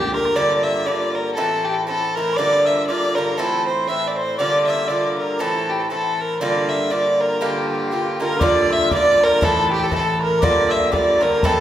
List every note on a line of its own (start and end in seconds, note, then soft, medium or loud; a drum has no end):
0.00 0.35 A#2 medium
0.00 0.35 D3 medium
0.00 0.36 D4 medium
0.00 0.11 G4 medium
0.00 0.13 G4 loud
0.00 0.36 G4 medium
0.14 0.38 A#4 loud
0.14 0.34 A#5 medium
0.14 bodhran medium
0.25 bodhran medium
0.36 0.85 G2 medium
0.36 0.86 D3 medium
0.36 0.87 A#3 medium
0.36 0.87 F4 medium
0.36 0.57 D5 loud
0.36 0.65 D6 medium
0.57 0.65 D5 medium
0.63 0.88 E5 medium
0.63 0.86 E6 medium
0.84 1.37 G2 medium
0.84 1.37 D3 soft
0.84 1.37 A#3 medium
0.84 1.17 D5 medium
0.84 1.14 D6 medium
0.89 1.38 F4 medium
1.15 1.33 A#4 medium
1.15 1.35 A#5 medium
1.34 1.86 A2 medium
1.34 1.87 E3 medium
1.34 1.87 C4 medium
1.34 1.88 E4 medium
1.34 1.66 A4 medium
1.34 1.67 A5 medium
1.65 1.75 G4 medium
1.65 1.86 G5 medium
1.74 1.86 A4 medium
1.87 2.16 A2 medium
1.87 2.16 E3 soft
1.87 2.17 C4 medium
1.87 2.17 E4 medium
1.87 2.17 A4 medium
1.87 2.14 A5 medium
2.15 2.38 A2 medium
2.15 2.38 E3 medium
2.15 2.39 C4 medium
2.15 2.39 E4 medium
2.15 2.38 A#4 loud
2.15 2.37 A#5 medium
2.35 2.87 G2 medium
2.35 2.88 D3 medium
2.35 2.88 A#3 medium
2.35 2.68 D5 loud
2.35 2.67 D6 loud
2.40 2.89 F4 medium
2.65 2.86 E5 medium
2.65 2.90 E6 medium
2.87 3.15 G2 medium
2.87 3.16 D3 medium
2.87 3.17 A#3 medium
2.87 3.17 F4 medium
2.87 3.17 D5 loud
2.87 3.18 D6 medium
3.15 3.37 G2 medium
3.15 3.38 D3 medium
3.15 3.38 A#3 medium
3.15 3.39 F4 medium
3.15 3.39 A#4 medium
3.15 3.39 A#5 medium
3.38 3.87 A2 medium
3.38 3.88 E3 medium
3.38 3.89 C4 medium
3.38 3.89 E4 loud
3.38 3.66 A4 loud
3.38 3.68 A5 medium
3.67 3.89 C5 medium
3.67 3.88 C6 medium
3.88 4.38 A2 soft
3.88 4.39 E3 medium
3.88 4.40 C4 medium
3.88 4.40 E4 medium
3.88 4.09 E5 medium
3.88 4.16 E6 medium
4.08 4.18 D5 medium
4.16 4.37 C5 medium
4.16 4.40 C6 medium
4.38 4.88 G2 medium
4.38 4.88 D3 medium
4.38 4.89 A#3 medium
4.38 4.90 F4 medium
4.38 4.65 D5 loud
4.38 4.71 D6 medium
4.66 4.89 E5 medium
4.66 4.87 E6 medium
4.87 5.39 G2 soft
4.87 5.40 D3 medium
4.87 5.40 A#3 medium
4.87 5.18 D5 medium
4.87 4.94 E6 medium
4.91 5.40 F4 medium
4.91 5.22 D6 medium
5.18 5.42 A#4 medium
5.18 5.43 A#5 medium
5.39 5.89 A2 medium
5.39 5.90 E3 medium
5.39 5.90 C4 medium
5.39 5.91 E4 medium
5.39 5.71 A4 medium
5.39 5.73 A5 medium
5.70 5.82 G4 medium
5.70 5.84 G5 medium
5.80 5.90 A4 medium
5.80 5.92 A5 medium
5.90 6.40 A2 soft
5.90 6.41 E3 medium
5.90 6.41 C4 soft
5.90 6.41 E4 medium
5.90 6.22 A4 medium
5.90 6.23 A5 medium
6.21 6.41 A#4 medium
6.21 6.41 A#5 medium
6.41 6.89 G2 medium
6.41 6.91 D3 medium
6.41 6.91 A#3 medium
6.41 6.92 F4 medium
6.41 6.71 D5 medium
6.41 6.69 D6 medium
6.69 6.93 E5 medium
6.90 7.40 G2 medium
6.90 7.41 D3 medium
6.90 7.42 A#3 medium
6.90 7.42 F4 medium
6.90 7.22 D5 medium
6.90 7.23 D6 medium
7.21 7.43 A#4 medium
7.21 7.43 A#5 medium
7.41 7.90 G2 medium
7.41 7.91 D3 medium
7.41 7.91 A#3 medium
7.41 7.92 F4 medium
7.41 8.21 G4 medium
7.41 7.68 G5 medium
7.66 7.73 A5 soft
7.71 7.89 G5 medium
7.88 8.18 G2 soft
7.88 7.93 F5 soft
7.92 8.19 D3 soft
7.92 8.19 A#3 medium
7.92 8.21 F4 medium
7.92 8.19 G5 medium
8.20 8.39 G2 medium
8.20 8.40 D3 medium
8.20 8.41 A#3 medium
8.20 8.41 F4 medium
8.20 8.41 A#4 medium
8.20 8.45 A#4 medium
8.20 8.41 A#5 medium
8.40 8.90 G2 medium
8.40 8.91 D3 medium
8.40 8.91 A#3 medium
8.40 8.92 F4 medium
8.40 8.70 D5 loud
8.40 8.74 D5 loud
8.40 8.64 D6 medium
8.40 bodhran medium
8.63 8.71 F6 medium
8.69 8.91 E5 medium
8.69 8.93 E5 loud
8.69 8.92 E6 medium
8.69 bodhran medium
8.90 9.41 G2 medium
8.90 9.42 D3 medium
8.90 9.42 A#3 medium
8.90 9.42 F4 medium
8.90 9.19 D5 medium
8.90 9.25 D5 loud
8.90 9.19 D6 medium
8.90 bodhran medium
9.19 9.41 A#4 medium
9.19 9.40 A#5 medium
9.19 bodhran medium
9.24 9.46 A#4 loud
9.41 9.90 A2 medium
9.41 9.91 E3 medium
9.41 9.91 C4 medium
9.41 9.92 E4 medium
9.41 9.69 A4 medium
9.41 9.72 A4 medium
9.41 9.72 A5 medium
9.41 bodhran medium
9.70 9.81 G4 medium
9.70 9.86 G4 medium
9.70 9.81 G5 medium
9.70 bodhran medium
9.80 9.91 A4 medium
9.80 9.89 A5 medium
9.84 9.94 A4 medium
9.90 10.41 A2 medium
9.90 10.42 E3 medium
9.90 10.43 C4 medium
9.90 10.43 E4 medium
9.90 10.19 A4 medium
9.90 10.21 A5 medium
9.90 bodhran medium
9.95 10.21 A4 medium
10.19 10.45 A#4 medium
10.19 10.39 A#5 medium
10.19 bodhran soft
10.40 10.90 G2 medium
10.40 10.91 D3 medium
10.40 10.91 A#3 loud
10.40 10.92 F4 medium
10.40 10.73 D5 medium
10.40 10.73 D5 loud
10.40 10.71 D6 loud
10.40 bodhran medium
10.69 10.93 E5 medium
10.69 10.78 E5 medium
10.69 10.93 E6 medium
10.69 bodhran medium
10.76 10.84 F5 medium
10.82 10.93 E5 medium
10.92 11.19 G2 medium
10.92 11.20 D3 medium
10.92 11.21 A#3 medium
10.92 11.21 F4 medium
10.92 11.20 D5 medium
10.92 11.24 D5 medium
10.92 11.20 D6 medium
10.92 bodhran medium
11.19 11.42 G2 medium
11.19 11.42 D3 medium
11.19 11.43 A#3 medium
11.19 11.43 F4 medium
11.19 11.46 A#4 loud
11.19 11.42 A#4 medium
11.19 11.40 A#5 medium
11.19 bodhran medium
11.41 11.60 A2 medium
11.41 11.60 E3 medium
11.41 11.60 A4 loud
11.41 11.60 A5 medium
11.41 bodhran medium
11.45 11.60 C4 medium
11.45 11.60 E4 loud
11.45 11.60 A4 medium